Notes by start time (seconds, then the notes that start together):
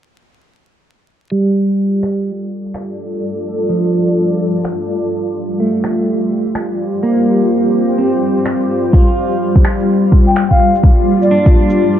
1.31 G3
1.52 F4
1.60 D5
1.70 shaker
1.78 A4
2.03 finger snap
2.18 shaker
2.66 shaker
2.74 finger snap
2.89 shaker
3.13 shaker
3.61 shaker
3.69 F3
3.85 shaker
4.08 shaker
4.56 shaker
4.65 finger snap
4.80 shaker
4.88 G4
5.04 shaker
5.51 shaker
5.60 A3
5.84 C5, finger snap
5.99 shaker
6.47 shaker
6.55 finger snap
6.71 shaker
6.94 shaker
7.03 A#3
7.42 shaker
7.66 shaker
7.90 shaker
7.98 C4
8.37 shaker
8.46 finger snap
8.61 shaker
8.85 shaker
8.93 F4, kick
9.32 shaker
9.40 A#3
9.56 kick
9.63 D5, finger snap
9.79 shaker
10.12 kick
10.27 G5, shaker
10.36 finger snap
10.50 F5, kick, shaker
10.75 shaker
10.83 kick
11.22 D5, shaker
11.31 D4
11.46 kick, shaker
11.70 shaker